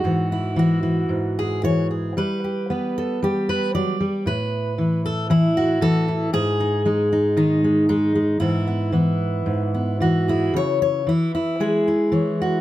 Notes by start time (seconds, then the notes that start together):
Already playing: F#4
0.04 G#2 E3
0.32 E4
0.56 E3 F#4
0.83 E3
1.09 G#2
1.39 G#4
1.63 E3 C#5
1.91 G#4
2.17 G3 B4
2.44 G4
2.70 B3 B4
2.98 A4
3.23 G3 G4
3.49 B4
3.75 F#3 D5
4.00 G3
4.26 A2 B4
4.78 E3
5.06 A4
5.30 E3 E4
5.57 F#4
5.81 E3 A4
6.08 E4
6.33 G#2 G#4
6.60 D#4
6.85 G#3 D#4
7.13 D#4
7.37 D#3 D#4
7.64 G#3
7.89 G#3 D#4
8.15 G#3
8.40 G#2 E3 B3 E4
8.67 B3
8.92 E3 B3
9.46 G#2
9.74 B3
10.00 E3 F#4
10.28 E4 G#4
10.54 C#3 C#5
10.82 C#5
11.07 E3 E4
11.35 E4
11.60 G#3 G#4
11.88 E4
12.12 E3 C#5
12.42 F#4